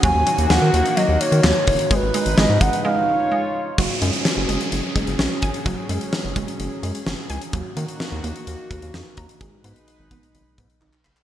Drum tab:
HH |x-xx--xxx-xx--ox|x-xx--xx--------|x-xx--xxx-xx--xx|x-xx--xxx-xx--xx|
CP |------------x---|----------------|----------------|----------------|
SD |----o-------o---|----o-----------|----o-------o---|----o-------o---|
BD |o-------------o-|o-----o---------|o---------o---o-|o-----o---------|

HH |x-xx--xxx-xx--xx|x-xxx-xxx-xx----|
CP |----------------|------------xxxx|
SD |----o-------o---|----------------|
BD |o---------o---o-|o-----o---o-----|